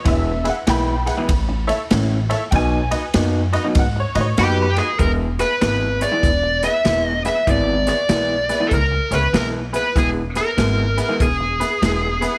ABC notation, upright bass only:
X:1
M:4/4
L:1/8
Q:"Swing" 1/4=97
K:E
V:1 name="Upright bass" clef=bass
E,,,2 B,,,2 A,,,2 A,,,2 | B,,,2 F,,2 G,, A,, F,,2 | E,,,2 G,,,2 E,,,2 E,,,2 | G,,,2 B,,,2 C,, C,, B,,,2 |
E,,,2 G,,,2 E,,,2 E,,,2 |]